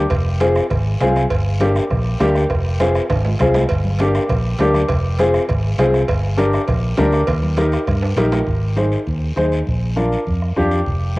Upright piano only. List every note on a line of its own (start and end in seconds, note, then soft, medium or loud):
0.41 0.62 C4 medium
0.41 0.62 F4 medium
0.41 0.62 G#4 medium
1.01 1.22 C4 medium
1.01 1.22 F4 medium
1.01 1.22 G#4 loud
1.60 1.81 A#3 medium
1.60 1.82 D4 medium
1.60 1.82 G4 medium
2.20 2.41 A#3 medium
2.20 2.41 D4 medium
2.20 2.41 G4 loud
2.80 3.01 C4 medium
2.80 3.01 F4 medium
2.80 3.01 G#4 medium
3.41 3.61 C4 medium
3.41 3.61 F4 medium
3.41 3.61 G#4 medium
4.00 4.21 A#3 medium
4.00 4.21 D4 medium
4.00 4.21 G4 medium
4.60 4.81 A#3 medium
4.60 4.81 D4 medium
4.60 4.81 G4 loud
5.19 5.40 C4 medium
5.19 5.40 F4 medium
5.19 5.40 G#4 medium
5.79 5.99 C4 medium
5.79 6.00 F4 medium
5.79 6.00 G#4 loud
6.37 6.59 D4 medium
6.37 6.59 G4 medium
6.37 6.59 A#4 medium
6.97 7.19 D4 loud
6.97 7.19 G4 medium
6.97 7.19 A#4 loud
7.57 7.78 D#4 medium
7.57 7.79 G4 medium
7.57 7.79 A#4 medium
8.17 8.38 D#4 medium
8.17 8.38 G4 medium
8.17 8.39 A#4 loud
8.77 8.98 D#4 medium
8.77 8.98 G#4 medium
8.77 8.98 C5 medium
9.36 9.58 D#4 medium
9.36 9.58 G#4 medium
9.36 9.58 C5 medium
9.96 10.18 D4 medium
9.96 10.18 F4 medium
9.96 10.18 A#4 medium
10.56 10.78 D4 medium
10.56 10.78 F4 medium
10.56 10.78 G4 loud